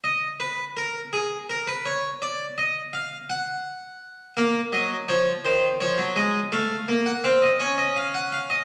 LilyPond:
<<
  \new Staff \with { instrumentName = "Harpsichord" } { \time 6/8 \key ees \minor \tempo 4. = 56 ees''8 ces''8 bes'8 aes'8 bes'16 ces''16 des''8 | d''8 ees''8 f''8 ges''4. | f''8 ees''8 des''8 c''8 des''8 ees''8 | f''8. ges''16 f''16 ees''16 des''16 ees''16 f''16 ges''16 f''16 ees''16 | }
  \new Staff \with { instrumentName = "Harpsichord" } { \clef bass \time 6/8 \key ees \minor r2. | r2. | bes8 ges8 f8 ees8 f16 ges16 aes8 | a8 bes8 c'8 des'4. | }
>>